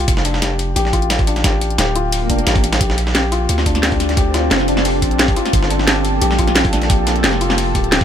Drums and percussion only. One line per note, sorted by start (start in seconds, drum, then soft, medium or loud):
0.08 kick loud
0.08 closed hi-hat medium
0.17 snare medium
0.25 closed hi-hat medium
0.34 snare soft
0.42 snare loud
0.42 closed hi-hat medium
0.59 closed hi-hat medium
0.76 closed hi-hat medium
0.85 snare soft
0.93 kick medium
0.93 closed hi-hat medium
1.02 closed hi-hat soft
1.10 snare loud
1.10 closed hi-hat medium
1.19 kick loud
1.19 closed hi-hat soft
1.27 closed hi-hat medium
1.36 snare soft
1.36 closed hi-hat soft
1.44 kick loud
1.44 snare loud
1.44 closed hi-hat medium
1.61 closed hi-hat medium
1.70 closed hi-hat soft
1.78 snare loud
1.78 closed hi-hat medium
1.96 closed hi-hat medium
2.12 closed hi-hat medium
2.12 open hi-hat medium
2.30 kick medium
2.30 closed hi-hat medium
2.39 closed hi-hat soft
2.47 snare loud
2.47 closed hi-hat medium
2.56 kick loud
2.56 closed hi-hat soft
2.64 closed hi-hat medium
2.73 snare medium
2.73 closed hi-hat medium
2.73 closed hi-hat soft
2.81 kick loud
2.81 closed hi-hat medium
2.90 snare medium
2.98 closed hi-hat medium
3.07 snare medium
3.15 snare loud
3.15 closed hi-hat medium
3.32 closed hi-hat medium
3.49 closed hi-hat medium
3.58 snare soft
3.66 kick medium
3.66 closed hi-hat medium
3.75 snare soft
3.75 closed hi-hat soft
3.83 snare loud
3.83 closed hi-hat medium
3.92 kick loud
3.92 closed hi-hat soft
4.00 snare soft
4.00 closed hi-hat medium
4.09 snare soft
4.09 closed hi-hat soft
4.17 kick loud
4.17 closed hi-hat medium
4.34 snare medium
4.34 closed hi-hat medium
4.51 snare loud
4.51 closed hi-hat medium
4.60 snare soft
4.68 closed hi-hat medium
4.77 snare soft
4.77 snare medium
4.77 snare soft
4.85 closed hi-hat medium
4.85 open hi-hat medium
5.02 kick medium
5.02 closed hi-hat medium
5.11 closed hi-hat soft
5.19 snare loud
5.19 closed hi-hat medium
5.28 kick loud
5.28 closed hi-hat soft
5.36 closed hi-hat medium
5.46 snare soft
5.46 closed hi-hat soft
5.53 kick loud
5.53 closed hi-hat medium
5.63 snare medium
5.70 closed hi-hat medium
5.79 snare medium
5.88 snare loud
5.88 closed hi-hat medium
6.05 closed hi-hat medium
6.22 closed hi-hat medium
6.31 snare soft
6.39 kick medium
6.39 closed hi-hat medium
6.47 snare soft
6.47 closed hi-hat soft
6.56 snare loud
6.56 closed hi-hat medium
6.65 kick loud
6.65 closed hi-hat soft
6.73 snare soft
6.73 closed hi-hat medium
6.82 snare soft
6.82 closed hi-hat soft
6.90 kick loud
6.90 closed hi-hat medium
7.07 snare medium
7.07 closed hi-hat medium
7.16 closed hi-hat soft
7.24 snare loud
7.24 closed hi-hat medium
7.33 snare soft
7.41 closed hi-hat medium
7.50 snare soft
7.50 snare medium
7.50 snare soft
7.58 closed hi-hat medium
7.58 open hi-hat medium
7.75 kick medium
7.75 closed hi-hat medium
7.84 closed hi-hat soft
7.92 snare loud
7.92 closed hi-hat medium
8.01 kick loud
8.01 closed hi-hat soft